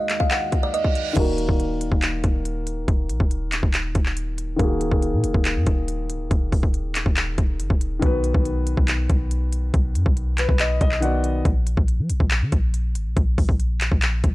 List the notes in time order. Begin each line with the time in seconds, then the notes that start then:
Already playing: D#2 D#3 G#3 A#3 F#4 G#4 D#5
0.09 clap, closed hi-hat
0.20 F5, kick
0.31 F#5, clap, closed hi-hat, reverse cymbal
0.52 kick, closed hi-hat
0.63 D5
0.74 D#5, closed hi-hat
0.84 kick
0.95 closed hi-hat
1.13 D#1 D#3 A#3, kick, closed hi-hat, crash
1.18 F#4 A#4
1.38 closed hi-hat
1.49 D#1, kick
1.60 closed hi-hat
1.81 closed hi-hat
1.92 D#1, kick
2.02 clap, closed hi-hat
2.24 D#1, kick, closed hi-hat
2.45 closed hi-hat
2.67 closed hi-hat
2.88 D#1, kick, closed hi-hat
3.09 A#1, closed hi-hat
3.20 D#1, kick
3.31 closed hi-hat
3.52 clap, closed hi-hat
3.63 D#1, kick
3.74 clap, closed hi-hat
3.95 D#1, kick, closed hi-hat
4.06 clap
4.17 closed hi-hat
4.38 closed hi-hat
4.56 D#1 D#3 A#3, kick, closed hi-hat
4.61 F#4 G#4
4.81 closed hi-hat
4.92 D#1, kick
5.02 closed hi-hat
5.13 A#2
5.24 D#1, closed hi-hat
5.34 D#1, kick
5.45 clap, closed hi-hat
5.56 F#2
5.67 D#1, kick, closed hi-hat
5.88 closed hi-hat
6.10 D1, closed hi-hat
6.20 D#1
6.31 D#1, kick, closed hi-hat
6.52 D#1, kick, open hi-hat
6.63 kick
6.74 closed hi-hat
6.95 clap, closed hi-hat
7.06 D#1, kick
7.17 clap, closed hi-hat
7.38 D#1, kick, closed hi-hat
7.60 F#1, closed hi-hat
7.70 D#1, kick
7.81 closed hi-hat
7.99 B1 D#3 B3, kick, closed hi-hat
8.04 F#4 B4
8.24 closed hi-hat
8.34 B1, kick
8.45 closed hi-hat
8.67 closed hi-hat
8.77 B1, kick
8.88 clap, closed hi-hat
9.10 B1, kick, closed hi-hat
9.31 closed hi-hat
9.52 closed hi-hat
9.74 B1, kick, closed hi-hat
9.95 F#2, closed hi-hat
10.06 B1, kick
10.17 closed hi-hat
10.38 B4, clap, closed hi-hat
10.49 B1, kick
10.59 D#5, clap, closed hi-hat
10.81 B1 D#5, kick, closed hi-hat
10.92 clap
11.00 D#3 B3 F#4 D5 F#5, closed hi-hat
11.24 closed hi-hat
11.45 A#1, kick, closed hi-hat
11.67 closed hi-hat
11.77 A#1, kick
11.88 closed hi-hat
11.99 F3
12.09 A#1, closed hi-hat
12.20 A#1, kick
12.31 clap, closed hi-hat
12.41 D3
12.52 A#1, kick, closed hi-hat
12.74 closed hi-hat
12.95 G#1, closed hi-hat
13.06 A#1
13.17 A#1, kick, closed hi-hat
13.38 A#1, kick, open hi-hat
13.49 kick
13.60 closed hi-hat
13.81 clap, closed hi-hat
13.92 A#1, kick
14.02 clap, closed hi-hat
14.24 A#1, kick, closed hi-hat